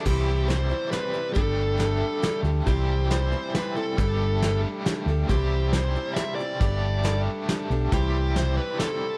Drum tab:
CC |x-----|------|------|------|
HH |--x-x-|x-x-x-|x-x-x-|x-x-x-|
SD |--o-o-|--o-o-|--o-o-|--o-o-|
BD |o-----|o-----|o-----|o-----|

CC |------|------|------|
HH |x-x-x-|x-x-x-|x-x-x-|
SD |--o-o-|--o-o-|--o-o-|
BD |o-----|o-----|o-----|